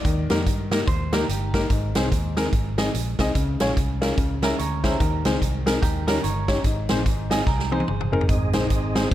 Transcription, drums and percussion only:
0.05 kick, closed hi-hat
0.30 snare, closed hi-hat
0.47 kick, closed hi-hat
0.71 snare, closed hi-hat
0.87 kick, closed hi-hat
1.13 snare, closed hi-hat
1.29 closed hi-hat
1.54 kick, snare, closed hi-hat
1.70 kick, closed hi-hat
1.95 snare, closed hi-hat
2.12 kick, closed hi-hat
2.37 snare, closed hi-hat
2.53 kick, closed hi-hat
2.78 snare, closed hi-hat
2.95 closed hi-hat
3.19 kick, snare, closed hi-hat
3.35 kick, closed hi-hat
3.60 snare, closed hi-hat
3.77 kick, closed hi-hat
4.02 snare, closed hi-hat
4.18 kick, closed hi-hat
4.43 snare, closed hi-hat
4.59 closed hi-hat
4.84 kick, snare, closed hi-hat
5.00 kick, closed hi-hat
5.25 snare, closed hi-hat
5.42 kick, closed hi-hat
5.67 snare, closed hi-hat
5.83 kick, closed hi-hat
6.08 snare, closed hi-hat
6.24 closed hi-hat
6.48 kick, snare, closed hi-hat
6.64 kick, closed hi-hat
6.89 snare, closed hi-hat
7.06 kick, closed hi-hat
7.31 snare, closed hi-hat
7.47 kick, snare
7.59 snare
7.72 high tom
7.80 high tom
7.88 mid tom
8.01 mid tom
8.13 floor tom
8.21 floor tom
8.29 kick, closed hi-hat
8.53 snare, closed hi-hat
8.70 kick, closed hi-hat
8.96 snare, closed hi-hat

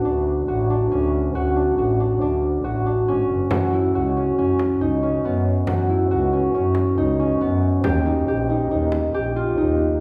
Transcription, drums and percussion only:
3.51 frame drum
4.59 frame drum
5.24 frame drum
5.67 frame drum
6.75 frame drum
7.41 frame drum
7.84 frame drum
8.92 frame drum
9.58 frame drum

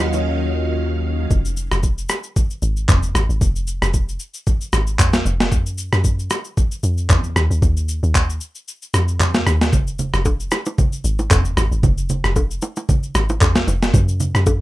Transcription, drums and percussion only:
0.13 low bongo, shaker
1.31 kick, shaker
1.45 shaker
1.57 shaker
1.72 cross-stick, shaker
1.83 kick, shaker
1.98 shaker
2.09 cross-stick, shaker
2.23 shaker
2.36 kick, shaker
2.50 shaker
2.62 shaker
2.77 shaker
2.88 kick, clap, mid tom, shaker
3.03 shaker
3.15 cross-stick, shaker
3.30 shaker
3.41 kick, shaker
3.56 shaker
3.67 shaker
3.82 cross-stick, shaker
3.94 kick, shaker
4.09 shaker
4.20 shaker
4.34 shaker
4.47 kick, shaker
4.61 shaker
4.73 cross-stick, shaker
4.87 shaker
4.99 kick, clap, mid tom, shaker
5.13 snare, shaker
5.26 shaker
5.40 snare, shaker
5.52 kick, shaker
5.66 shaker
5.78 shaker
5.93 cross-stick, shaker
6.04 kick, shaker
6.19 shaker
6.30 cross-stick, shaker
6.44 shaker
6.57 kick, shaker
6.71 shaker
6.83 shaker
6.98 shaker
7.09 kick, clap, mid tom, shaker
7.24 shaker
7.36 cross-stick, shaker
7.51 shaker
7.62 kick, shaker
7.77 shaker
7.88 shaker
8.03 shaker
8.15 kick, clap, shaker
8.30 shaker
8.41 shaker
8.55 shaker
8.68 shaker
8.82 shaker
8.94 cross-stick, shaker
9.08 shaker
9.20 clap, mid tom, shaker
9.34 snare, shaker
9.47 cross-stick, shaker
9.61 snare, shaker
9.73 kick, low conga, shaker
9.87 shaker
9.99 low conga, shaker
10.14 cross-stick, shaker
10.25 kick, high bongo, shaker
10.40 shaker
10.51 cross-stick, low bongo, shaker
10.65 low bongo, shaker
10.78 kick, low conga, shaker
10.92 shaker
11.04 shaker
11.19 low bongo, shaker
11.30 kick, clap, mid tom, high bongo, shaker
11.45 shaker
11.57 cross-stick, low bongo, shaker
11.72 shaker
11.83 kick, low conga, shaker
11.98 shaker
12.09 low conga, shaker
12.24 cross-stick, shaker
12.36 kick, high bongo, shaker
12.51 shaker
12.62 low bongo, shaker
12.76 low bongo, shaker
12.89 kick, low conga, shaker
13.03 shaker
13.15 cross-stick, shaker
13.29 low bongo, shaker
13.41 kick, clap, mid tom, high bongo, shaker
13.55 snare, shaker
13.68 low bongo, shaker
13.83 snare, shaker
13.94 kick, low conga, shaker
14.08 shaker
14.20 low conga, shaker
14.35 cross-stick, shaker
14.46 kick, high bongo, shaker

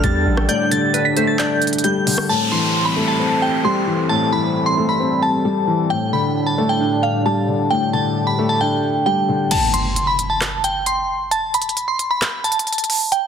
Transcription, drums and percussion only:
0.04 kick, closed hi-hat
0.37 cross-stick
0.49 closed hi-hat
0.71 closed hi-hat
0.94 closed hi-hat
1.17 closed hi-hat
1.39 clap, closed hi-hat
1.62 closed hi-hat
1.67 closed hi-hat
1.73 closed hi-hat
1.78 closed hi-hat
1.84 closed hi-hat
2.07 open hi-hat
2.18 cross-stick
9.51 closed hi-hat, crash
9.74 closed hi-hat
9.96 closed hi-hat
10.19 closed hi-hat
10.41 cross-stick, clap, closed hi-hat
10.64 closed hi-hat
10.86 closed hi-hat
11.31 closed hi-hat
11.54 closed hi-hat
11.62 closed hi-hat
11.69 closed hi-hat
11.77 closed hi-hat
11.99 closed hi-hat
12.22 cross-stick, clap, closed hi-hat
12.44 closed hi-hat
12.52 closed hi-hat
12.59 closed hi-hat
12.67 closed hi-hat
12.73 closed hi-hat
12.78 closed hi-hat
12.84 closed hi-hat
12.90 open hi-hat
13.12 closed hi-hat

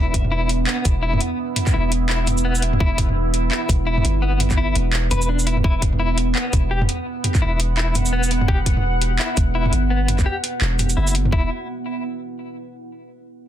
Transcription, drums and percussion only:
0.14 kick, closed hi-hat, mid tom
0.25 mid tom
0.49 closed hi-hat
0.67 clap
0.85 kick, closed hi-hat, shaker
1.13 mid tom
1.21 closed hi-hat
1.56 closed hi-hat, mid tom
1.67 kick, clap, mid tom, shaker
1.92 closed hi-hat
2.10 clap
2.27 closed hi-hat, mid tom, shaker
2.38 shaker
2.55 shaker
2.62 closed hi-hat
2.73 mid tom
2.80 kick
2.98 kick, closed hi-hat, mid tom
3.09 mid tom
3.34 closed hi-hat
3.51 clap
3.69 kick, closed hi-hat, shaker
3.98 mid tom
4.05 closed hi-hat
4.40 closed hi-hat, mid tom
4.51 kick, clap, mid tom, shaker
4.75 closed hi-hat
4.93 clap
5.11 closed hi-hat, mid tom, shaker
5.22 shaker
5.39 shaker
5.47 closed hi-hat
5.57 mid tom
5.64 kick
5.82 kick, closed hi-hat, mid tom
5.93 mid tom
6.18 closed hi-hat
6.35 clap
6.53 kick, closed hi-hat, shaker
6.81 mid tom
6.89 closed hi-hat
7.24 closed hi-hat, mid tom
7.35 kick, clap, mid tom, shaker
7.60 closed hi-hat
7.78 clap
7.95 closed hi-hat, mid tom, shaker
8.06 shaker
8.24 shaker
8.31 closed hi-hat
8.41 mid tom
8.48 kick
8.66 kick, closed hi-hat, mid tom
8.77 mid tom
9.02 closed hi-hat
9.19 clap
9.37 kick, closed hi-hat, shaker
9.66 mid tom
9.73 closed hi-hat
10.08 closed hi-hat, mid tom
10.19 kick, clap, mid tom, shaker
10.44 closed hi-hat
10.61 clap
10.79 closed hi-hat, mid tom, shaker
10.90 closed hi-hat, shaker
11.07 shaker
11.15 closed hi-hat
11.25 mid tom
11.32 kick

